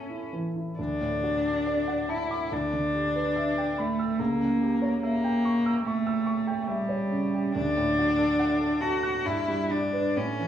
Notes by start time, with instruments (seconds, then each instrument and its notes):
Already playing: grand piano A2 A4 E5 A5 E6, cello C#4
0.10 grand piano E4
0.33 grand piano E3
0.56 grand piano E4
0.79 grand piano D2, cello D4
1.01 grand piano A2
1.24 grand piano F#4
1.45 grand piano A4
1.66 grand piano D5
1.88 grand piano F#5
2.09 cello E4, grand piano A5
2.31 grand piano D6
2.52 grand piano D2, cello D4
2.73 grand piano D3
2.94 grand piano G4
3.15 grand piano B4
3.36 grand piano E5
3.58 grand piano G5
3.78 cello A3, grand piano B5
3.99 grand piano E6
4.19 grand piano C#2, cello A#3
4.40 grand piano C#3
4.62 grand piano G4
4.82 grand piano C#5
5.02 cello A#3, grand piano E5
5.24 grand piano G5
5.45 grand piano C#6
5.66 grand piano E6
5.85 cello A3, grand piano C#6
6.07 grand piano E6
6.26 grand piano C#6
6.47 grand piano G5
6.67 cello G3, grand piano E5
6.89 grand piano C#5
7.11 grand piano C#3
7.35 grand piano G4
7.55 grand piano D2, cello D4
7.77 grand piano A2
7.99 grand piano F#4
8.18 grand piano A4
8.39 grand piano F#5
8.60 grand piano A4
8.81 cello F#4, grand piano A5
9.03 grand piano F#6
9.25 grand piano G2, cello E4
9.48 grand piano G3
9.71 cello D4, grand piano G4
9.93 grand piano B4
10.16 grand piano A2, cello C#4
10.39 grand piano E3